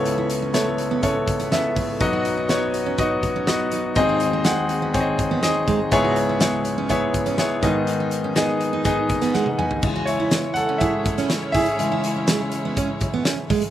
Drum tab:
CC |----------------|----------------|----------------|----------------|
HH |x-x-x-x-x-xxx-o-|x-x-x-x-x-x-x-x-|x-x-x-x-x-x-x-x-|x-x-x-x-x-xxx-x-|
SD |----o-------o---|----o-------o---|----o-------o---|----o-------o---|
T1 |----------------|----------------|----------------|----------------|
T2 |----------------|----------------|----------------|----------------|
FT |----------------|----------------|----------------|----------------|
BD |--------o-o---o-|o-------o-o-----|o-------o-o---o-|o-------o-o---o-|

CC |----------------|x---------------|----------------|
HH |x-x-x-x-x-xx----|--x-x-x-x-xxx-ox|x-x-x-x-x-x-x-ox|
SD |----o------oo---|----o------oo---|----o-------o---|
T1 |-------------o--|----------------|----------------|
T2 |--------------o-|----------------|----------------|
FT |---------------o|----------------|----------------|
BD |--------o-o-----|o-------o-o---o-|--------o-o---o-|